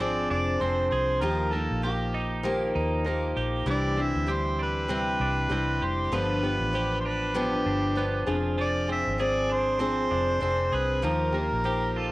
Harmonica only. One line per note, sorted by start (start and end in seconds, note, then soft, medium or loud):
0.01 0.29 D5 loud
0.30 0.63 D5 loud
0.61 0.89 C5 loud
0.90 1.22 C5 medium
1.21 1.54 A#4 medium
1.52 1.83 A4 medium
1.84 2.41 G4 medium
3.70 4.03 D5 loud
4.01 4.33 E5 loud
4.32 4.61 C5 medium
4.62 5.86 B4 loud
5.84 6.16 C5 medium
6.15 7.00 B4 loud
7.00 7.08 C5 medium
7.06 7.38 B4 medium
7.36 8.28 G4 medium
8.61 8.88 D5 loud
8.92 9.14 E5 loud
9.14 9.24 E5 medium
9.23 9.54 D5 loud
9.53 10.76 C5 loud
10.75 11.04 B4 medium
11.04 11.99 A#4 loud
11.97 12.12 A4 medium